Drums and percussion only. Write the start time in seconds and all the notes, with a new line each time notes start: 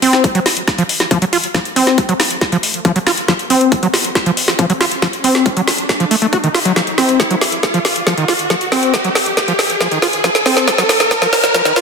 0.02 open hi-hat
0.13 snare, closed hi-hat
0.24 kick, closed hi-hat
0.35 closed hi-hat
0.46 snare, open hi-hat
0.57 closed hi-hat
0.68 kick, snare, closed hi-hat
0.78 closed hi-hat
0.89 open hi-hat
1.00 snare, closed hi-hat
1.11 kick, closed hi-hat
1.22 closed hi-hat
1.33 open hi-hat
1.44 closed hi-hat
1.54 kick, snare, closed hi-hat
1.65 closed hi-hat
1.76 open hi-hat
1.87 snare, closed hi-hat
1.98 kick, closed hi-hat
2.09 closed hi-hat
2.20 snare, open hi-hat
2.31 closed hi-hat
2.41 kick, snare, closed hi-hat
2.52 closed hi-hat
2.63 open hi-hat
2.74 closed hi-hat
2.85 kick, closed hi-hat
2.96 closed hi-hat
3.07 snare, open hi-hat
3.18 closed hi-hat
3.28 kick, snare, closed hi-hat
3.39 closed hi-hat
3.50 open hi-hat
3.61 closed hi-hat
3.72 kick, closed hi-hat
3.83 closed hi-hat
3.94 snare, open hi-hat
4.04 closed hi-hat
4.15 kick, snare, closed hi-hat
4.26 closed hi-hat
4.37 open hi-hat
4.48 snare, closed hi-hat
4.59 kick, closed hi-hat
4.70 closed hi-hat
4.81 snare, open hi-hat
4.91 closed hi-hat
5.02 kick, snare, closed hi-hat
5.13 closed hi-hat
5.24 open hi-hat
5.35 snare
5.46 kick, closed hi-hat
5.57 closed hi-hat
5.68 snare, open hi-hat
5.78 closed hi-hat
5.89 kick, snare, closed hi-hat
6.00 closed hi-hat
6.11 open hi-hat
6.22 closed hi-hat
6.33 kick, closed hi-hat
6.44 closed hi-hat
6.55 snare, open hi-hat
6.65 closed hi-hat
6.76 kick, snare, closed hi-hat
6.87 closed hi-hat
6.98 snare, open hi-hat
7.09 closed hi-hat
7.20 kick, snare, closed hi-hat
7.31 closed hi-hat
7.41 snare, open hi-hat
7.52 closed hi-hat
7.63 kick, snare, closed hi-hat
7.74 closed hi-hat
7.85 snare, open hi-hat
7.96 closed hi-hat
8.07 kick, snare, closed hi-hat
8.18 closed hi-hat
8.28 snare, open hi-hat
8.39 closed hi-hat
8.50 kick, snare, closed hi-hat
8.61 closed hi-hat
8.72 snare, open hi-hat
8.83 closed hi-hat
8.94 kick, snare, closed hi-hat
9.04 closed hi-hat
9.15 snare, open hi-hat
9.26 closed hi-hat
9.37 kick, snare, closed hi-hat
9.48 closed hi-hat
9.59 snare, open hi-hat
9.70 closed hi-hat
9.81 kick, snare, closed hi-hat
9.91 closed hi-hat
10.02 snare, open hi-hat
10.13 closed hi-hat
10.24 kick, snare, closed hi-hat
10.35 snare, closed hi-hat
10.46 snare, open hi-hat
10.57 snare, closed hi-hat
10.68 kick, snare, closed hi-hat
10.78 snare, closed hi-hat
10.89 snare, open hi-hat
11.00 snare, closed hi-hat
11.11 kick, snare, closed hi-hat
11.22 snare, closed hi-hat
11.33 snare, open hi-hat
11.44 snare, closed hi-hat
11.54 kick, snare, closed hi-hat
11.65 snare, closed hi-hat
11.76 snare, open hi-hat